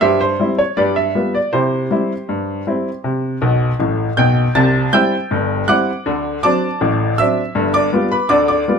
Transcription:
grand piano
0.01 G2 G4 C5 E5
0.21 C5
0.40 G3 C4 E4
0.59 C#5
0.77 G2 G4 B4 D5
0.96 E5
1.15 G3 B3 F4
1.35 D5
1.53 C3 E4 G4 C5
1.91 G3 C4 E4
2.29 G2
2.67 G3 C4 E4
3.04 C3
3.42 B1 B2
3.79 A1 A2
4.17 B1 B2 G5 G6
4.55 C2 C3 A5 A6
4.93 G3 C4 E4 G5 E6 G6
5.31 G1 G2
5.68 G3 C4 E4 F#5 D6 F#6
6.06 D2 D3
6.43 F#3 C4 D4 D5 A5 D6
6.81 A1 A2
7.18 F#3 C4 D4 E5 E6
7.55 G1 G2
7.74 D5 D6
7.93 G3 B3 F4
8.12 B4 B5
8.29 D2 D3 D5 D6
8.48 D5 D6
8.68 G3 B3 F4

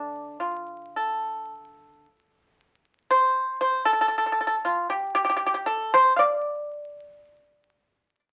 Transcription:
pipa
Already playing: D3 A3 D4 D5
0.40 F4
0.96 A4
3.11 C5
3.61 C5
3.85 A4
3.93 A4
4.01 A4
4.08 A4
4.18 A4
4.26 A4
4.32 A4
4.41 A4
4.47 A4
4.65 F4
4.90 G4
5.15 G4
5.25 G4
5.30 G4
5.37 G4
5.46 G4
5.54 G4
5.66 A4
5.94 C5
6.16 D5 F5

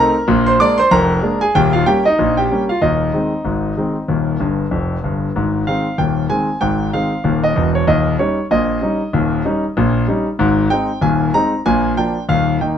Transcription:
grand piano
Already playing: A3 C4 D#4 A#4 A#5
0.28 A#1 A#2
0.47 C5 C6
0.60 G#3 A#3 D4 D5 D6
0.78 C5 C6
0.91 F1 F2 A#4 A#5
1.22 G#3 A#3 D4
1.41 G#4 G#5
1.55 D#1 D#2 G4 G5
1.73 F4 F5
1.86 G3 A#3 C#4 G4 G5
2.05 D#4 D#5
2.19 A#1 A#2
2.37 G4 G5
2.51 G3 A#3 C#4
2.69 F4 F5
2.82 D#1 D#2 D#4 D#5
3.13 D#3 G#3 C4
3.45 G#1 G#2
3.77 D#3 G#3 C4
4.08 D#1 D#2
4.40 G1 G2
4.71 F1 F2
5.04 G1 G2
5.36 G#1 G#2
5.67 D#3 G#3 C4 F5
5.98 D#1 D#2 G5
6.29 D#3 G#3 C4 G#5
6.61 G#1 G#2 G5
6.93 D#3 G#3 C4 F5
7.24 D#1 D#2
7.44 D#5
7.56 E1 E2
7.75 C#5
7.87 D#1 D#2 D#5
8.19 G3 C#4 D#4 C#5
8.51 A#1 A#2 D#5
8.82 G3 C#4 D#4
9.13 D#1 D#2
9.45 G3 C#4 D#4
9.77 A#1 A#2
10.08 G3 C#4 D#4
10.39 G#1 G#2
10.70 G#3 C4 D#4 G5
11.02 D#1 D#2 G#5
11.34 G#3 C4 D#4 A#5
11.66 A#1 A#2 G#5
11.97 F3 A#3 D4 G5
12.29 D#1 D#2 F5
12.61 D#3 A#3 D#4 G5

